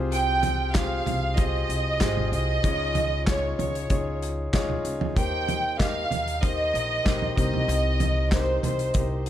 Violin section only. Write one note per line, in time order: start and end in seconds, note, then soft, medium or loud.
0.13 0.71 G5 loud
0.75 1.38 F5 loud
1.38 2.32 D#5 medium
2.33 3.24 D#5 loud
3.27 3.58 C#5 medium
3.59 4.18 C#5 medium
5.17 5.76 G5 loud
5.80 6.43 F5 loud
6.43 7.36 D#5 loud
7.38 8.28 D#5 medium
8.33 8.63 C5 medium
8.64 9.23 C5 medium